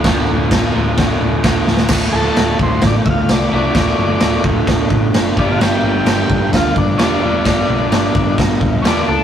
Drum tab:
CC |x---x---x---x---|x---x---x---x---|x---x---x---x---|x---x---x---x---|
SD |o---o---o---o-oo|o---o---o---o---|o---o---o---o---|o---o---o---o---|
BD |o---o---o---o---|o-----o-o-o-----|o-----o-o-o---o-|------o-o-o-----|

CC |x---x---x---x---|
SD |o---o---o---o---|
BD |o-----o-o-o-----|